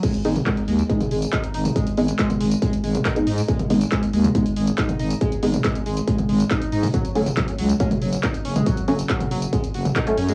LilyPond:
<<
  \new Staff \with { instrumentName = "Synth stab" } { \time 4/4 \key gis \phrygian \tempo 4 = 139 r8 <gis b dis'>16 r4 r16 <gis b dis'>16 r4. r16 | r8 <gis b dis'>16 r2 r8 <gis b dis'>16 r8 | r8 <gis b dis'>16 r4 r16 <gis b dis'>16 r4. r16 | r8 <gis b dis'>16 r2. r16 |
r8 <fis a cis'>16 r4 r16 <fis a cis'>16 r4. r16 | r8 <fis a cis'>16 r2 r8 <fis a cis'>16 r8 | }
  \new Staff \with { instrumentName = "Analog synth lead" } { \clef bass \time 4/4 \key gis \phrygian gis16 r16 gis16 r16 gis16 r16 gis16 r16 gis16 r16 gis16 r16 dis'16 r16 dis'16 r16 | gis16 r16 gis16 r16 gis16 r16 gis16 r16 gis16 r16 gis16 r16 dis'16 r16 dis'16 r16 | gis16 r16 gis16 r16 gis16 r16 gis16 r16 gis16 r16 gis16 r16 dis'16 r16 dis'16 r16 | gis16 r16 gis16 r16 gis16 r16 gis16 r16 gis16 r16 gis16 r16 dis'16 r16 dis'16 r16 |
fis16 r16 fis16 r16 fis16 r16 fis16 r16 gis16 r16 fis16 r16 dis'16 r16 cis'16 gis16 | fis16 r16 fis16 r16 fis16 r16 fis16 r16 gis16 r16 fis16 r16 dis'16 r16 cis'16 gis16 | }
  \new Staff \with { instrumentName = "FM bass" } { \clef bass \time 4/4 \key gis \phrygian r8 gis,,8 r8 dis,8 r8 gis,,8 r8 gis,,8 | r8 gis,,8 r8 gis,,8 r8 gis,,8 r8 gis,8 | r8 gis,,8 r8 dis,8 r8 gis,,8 r8 gis,,8 | r8 gis,,8 r8 gis,,8 r8 gis,,8 r8 gis,8 |
r8 fis,,8 r8 cis,8 r8 fis,,8 r8 fis,,8 | r8 fis,,8 r8 fis,,8 r8 fis,,8 r8 fis,8 | }
  \new DrumStaff \with { instrumentName = "Drums" } \drummode { \time 4/4 <cymc hh bd tamb>16 <hh tamb>16 hho16 <hh tamb toml>16 <hc hh bd tamb>16 <hh tamb>16 hho16 <hh tamb>16 <hh bd tamb>16 <hh tamb toml>16 hho16 <hh tamb>16 <hc hh bd>16 <hh tamb>16 hho16 <hh tamb toml>16 | <hh bd tamb>16 <hh tamb>16 hho16 <hh tamb>16 <hc hh bd tamb>16 <hh tamb toml>16 hho16 <hh tamb>16 <hh bd tamb>16 <hh tamb>16 hho16 <hh tamb toml>16 <hc hh bd tamb>16 <hh tamb>16 hho16 <hho tamb>16 | <hh bd tamb>16 <hh tamb toml>16 hho16 <hh tamb>16 <hc hh bd tamb>16 <hh tamb>16 hho16 <hh tamb toml>16 <hh bd tamb>16 <hh tamb>16 hho16 <hh tamb>16 <hc hh bd tamb>16 <hh tamb toml>16 hho16 <hh tamb>16 | <hh bd tamb>16 <hh tamb>16 hho16 <hh tamb toml>16 <hc hh bd tamb>16 <hh tamb>16 hho16 <hh tamb>16 <hh bd tamb>16 <hh tamb toml>16 hho16 <hh tamb>16 <hc hh bd tamb>16 <hh tamb>16 hho16 <hho tamb toml>16 |
<hh bd tamb>16 <hh tamb>16 hho16 <hh tamb toml>16 <hc hh bd tamb>16 <hh tamb>16 hho16 <hh tamb>16 <hh bd tamb>16 <hh tamb toml>16 hho16 <hh tamb>16 <hc hh bd tamb>16 <hh tamb>16 hho16 <hh tamb toml>16 | <hh bd tamb>16 <hh tamb>16 hho16 <hh tamb>16 <hc hh bd tamb>16 <hh tamb toml>16 hho16 <hh tamb>16 <hh bd tamb>16 <hh tamb>16 hho16 <hh tamb toml>16 <hc hh bd tamb>16 <hh tamb>16 hho16 <hho tamb>16 | }
>>